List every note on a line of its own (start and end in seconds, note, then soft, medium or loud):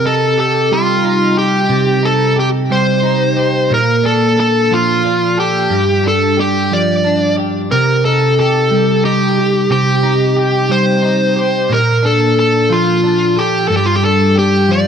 0.00 1.68 C3 medium
0.00 0.37 G4 soft
0.05 1.02 D#4 soft
0.05 0.39 A4 medium
0.38 1.35 G4 medium
0.38 0.73 A4 medium
0.71 2.69 G3 medium
0.71 1.38 F4 medium
1.04 2.02 D#4 soft
1.37 2.35 G4 soft
1.37 2.07 G4 medium
1.69 3.71 C3 medium
2.03 3.02 D#4 soft
2.03 2.36 A4 medium
2.36 3.36 G4 medium
2.36 2.48 G4 medium
2.70 3.78 G3 medium
2.70 3.73 C5 medium
3.03 3.77 D#4 soft
3.37 3.77 G4 soft
3.70 5.70 A#2 medium
3.70 4.06 A#4 medium
4.03 5.04 D4 soft
4.03 4.39 A4 medium
4.37 5.36 A4 medium
4.37 4.74 A4 medium
4.71 5.78 F3 medium
4.71 5.39 F4 medium
5.04 5.78 D4 soft
5.38 6.07 G4 medium
5.38 5.78 A4 soft
5.70 7.71 G2 medium
6.04 7.03 D4 soft
6.08 6.40 A4 medium
6.37 7.37 G4 medium
6.37 6.74 G4 medium
6.71 7.78 F3 medium
6.71 7.35 D5 medium
7.05 7.78 D4 soft
7.37 8.38 G4 soft
7.71 9.69 C3 medium
7.71 8.05 A#4 medium
8.05 9.02 D#4 soft
8.05 8.39 A4 medium
8.39 9.36 G4 medium
8.39 9.05 A4 medium
8.71 10.68 G3 medium
9.04 10.02 D#4 soft
9.04 9.71 G4 medium
9.38 10.35 G4 soft
9.70 11.70 C3 medium
9.70 10.74 G4 medium
10.03 11.01 D#4 soft
10.37 11.35 G4 medium
10.69 11.76 G3 medium
10.69 11.74 C5 medium
11.02 11.76 D#4 soft
11.37 11.77 G4 soft
11.69 13.70 A#2 medium
11.69 12.05 A#4 medium
12.03 13.03 D4 soft
12.03 12.38 A4 medium
12.36 13.35 A4 soft
12.36 12.73 A4 medium
12.70 13.76 F3 medium
12.70 13.40 F4 medium
13.04 13.77 D4 soft
13.36 13.68 G4 medium
13.36 13.76 A4 medium
13.68 14.87 G2 medium
13.68 13.76 A4 medium
13.77 13.85 G4 medium
13.86 13.95 F4 medium
13.95 14.04 G4 medium
14.03 14.87 D4 soft
14.03 14.38 A4 medium
14.36 14.87 G4 medium
14.36 14.71 G4 medium
14.68 14.87 F3 medium
14.68 14.87 D5 medium